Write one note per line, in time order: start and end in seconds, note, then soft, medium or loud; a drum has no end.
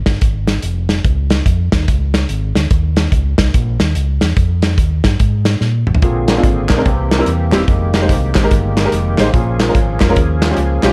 0.06 0.20 G1 medium
0.06 kick medium
0.06 snare loud
0.06 closed hi-hat medium
0.21 0.57 G#1 medium
0.21 kick loud
0.21 closed hi-hat medium
0.47 snare medium
0.47 closed hi-hat medium
0.63 0.98 F1 medium
0.63 closed hi-hat medium
0.89 snare medium
0.89 closed hi-hat medium
1.04 1.40 C#2 medium
1.04 kick loud
1.04 closed hi-hat medium
1.30 snare loud
1.30 closed hi-hat medium
1.46 1.68 F2 medium
1.46 kick medium
1.46 closed hi-hat loud
1.72 1.86 D#2 medium
1.72 kick medium
1.72 snare loud
1.72 closed hi-hat medium
1.88 2.23 C#2 medium
1.88 kick loud
1.88 closed hi-hat medium
2.14 snare loud
2.14 closed hi-hat medium
2.29 2.51 G#1 medium
2.29 closed hi-hat medium
2.55 2.69 D2 medium
2.55 snare medium
2.55 closed hi-hat medium
2.71 3.06 D#2 medium
2.71 kick loud
2.71 closed hi-hat medium
2.97 snare loud
2.97 closed hi-hat medium
3.12 3.34 C#2 medium
3.12 kick medium
3.12 closed hi-hat medium
3.38 3.52 C2 medium
3.38 kick medium
3.38 snare loud
3.38 closed hi-hat loud
3.54 3.76 A#1 medium
3.54 kick loud
3.54 closed hi-hat medium
3.80 3.93 D#2 medium
3.80 snare loud
3.80 closed hi-hat medium
3.95 4.18 C#2 medium
3.95 closed hi-hat medium
4.21 4.35 E2 medium
4.21 snare medium
4.21 closed hi-hat medium
4.37 4.78 F2 medium
4.37 kick medium
4.37 closed hi-hat medium
4.62 snare loud
4.62 closed hi-hat medium
4.78 5.00 D#2 medium
4.78 kick medium
4.78 closed hi-hat loud
5.04 5.18 G2 medium
5.04 kick medium
5.04 snare loud
5.04 closed hi-hat medium
5.20 5.55 G#2 medium
5.20 kick medium
5.20 closed hi-hat medium
5.45 snare loud
5.45 closed hi-hat medium
5.61 5.83 A#2 medium
5.61 snare soft
5.87 6.00 A1 medium
5.87 mid tom medium
5.95 floor tom medium
6.02 6.38 A#1 medium
6.02 6.66 A#2 medium
6.02 6.85 D3 medium
6.02 10.93 A#3 medium
6.02 7.67 C4 medium
6.02 6.85 G#4 medium
6.02 kick loud
6.02 closed hi-hat medium
6.28 6.32 D4 soft
6.28 6.33 A#4 medium
6.28 snare loud
6.28 clap medium
6.28 closed hi-hat medium
6.36 6.44 G#3 medium
6.36 6.45 C4 medium
6.36 6.45 D4 medium
6.36 6.45 F4 medium
6.43 6.66 G#1 medium
6.43 kick medium
6.43 closed hi-hat loud
6.69 6.83 A#1 medium
6.69 6.74 D4 soft
6.69 6.74 A#4 medium
6.69 kick loud
6.69 snare loud
6.69 clap loud
6.69 closed hi-hat loud
6.77 6.85 G#3 medium
6.77 6.85 C4 medium
6.77 6.86 D4 medium
6.77 6.86 A#4 medium
6.85 7.21 C2 medium
6.85 7.49 C3 medium
6.85 7.67 E3 medium
6.85 7.68 G4 medium
6.85 kick loud
6.85 closed hi-hat medium
7.11 7.15 E4 soft
7.11 7.16 A#4 soft
7.11 snare loud
7.11 clap medium
7.11 closed hi-hat medium
7.18 7.27 G3 medium
7.18 7.27 C4 medium
7.18 7.27 E4 medium
7.18 7.27 A#4 medium
7.26 7.54 E2 medium
7.26 closed hi-hat medium
7.52 7.66 E1 medium
7.52 7.61 G3 medium
7.52 7.61 C4 medium
7.52 7.61 E4 medium
7.52 7.61 G4 loud
7.52 snare medium
7.52 clap medium
7.52 closed hi-hat medium
7.68 8.11 F1 medium
7.68 9.32 D#3 medium
7.68 9.32 G#3 medium
7.68 9.32 G4 medium
7.68 kick loud
7.68 closed hi-hat medium
7.94 7.98 G4 medium
7.94 7.98 A#4 medium
7.94 snare loud
7.94 clap medium
7.94 closed hi-hat medium
8.01 8.10 G#3 medium
8.01 8.10 D#4 medium
8.01 8.10 G4 medium
8.01 8.10 C5 medium
8.09 8.31 C2 medium
8.09 kick medium
8.09 closed hi-hat loud
8.34 8.49 G#1 medium
8.34 8.39 G4 soft
8.34 8.39 C5 medium
8.34 kick loud
8.34 snare loud
8.34 clap loud
8.34 closed hi-hat medium
8.43 8.51 G#3 medium
8.43 8.51 D#4 medium
8.43 8.51 G4 medium
8.43 8.52 A#4 medium
8.51 8.86 G1 loud
8.51 kick loud
8.51 closed hi-hat medium
8.76 8.81 G4 soft
8.76 8.81 A#4 soft
8.76 snare medium
8.76 clap loud
8.76 closed hi-hat medium
8.85 8.93 G#3 medium
8.85 8.93 D#4 medium
8.85 8.93 G4 medium
8.85 8.93 A#4 medium
8.92 9.14 F1 medium
8.92 closed hi-hat medium
9.18 9.31 A1 medium
9.18 9.26 G#3 medium
9.18 9.26 D#4 medium
9.18 9.27 G4 medium
9.18 9.27 C5 medium
9.18 snare medium
9.18 clap medium
9.18 closed hi-hat medium
9.34 9.69 A#1 medium
9.34 9.97 A#2 medium
9.34 10.93 F3 medium
9.34 10.93 C#4 medium
9.34 10.93 G#4 medium
9.34 kick loud
9.34 closed hi-hat medium
9.59 9.64 F4 soft
9.59 9.64 A#4 medium
9.59 snare loud
9.59 clap medium
9.59 closed hi-hat medium
9.68 9.76 G#3 medium
9.68 9.76 C#4 medium
9.68 9.76 F4 medium
9.68 9.76 A#4 medium
9.75 9.97 G#1 medium
9.75 kick medium
9.75 closed hi-hat loud
10.00 10.14 F1 medium
10.00 10.05 F4 medium
10.00 10.06 A#4 soft
10.00 kick medium
10.00 snare loud
10.00 clap medium
10.00 closed hi-hat loud
10.09 10.17 G#3 medium
10.09 10.17 C#4 medium
10.09 10.17 F4 medium
10.09 10.17 A#4 medium
10.16 10.51 D#2 medium
10.16 kick loud
10.16 closed hi-hat medium
10.42 10.46 F4 soft
10.42 10.47 A#4 soft
10.42 snare loud
10.42 clap loud
10.42 closed hi-hat medium
10.50 10.58 G#3 medium
10.50 10.58 C#4 medium
10.50 10.58 F4 medium
10.50 10.58 G4 medium
10.57 10.79 C#2 medium
10.57 closed hi-hat medium
10.83 10.93 B1 medium
10.83 10.91 G#3 medium
10.83 10.91 C#4 medium
10.83 10.91 F4 medium
10.83 10.92 G4 medium
10.83 snare medium
10.83 clap medium
10.83 closed hi-hat medium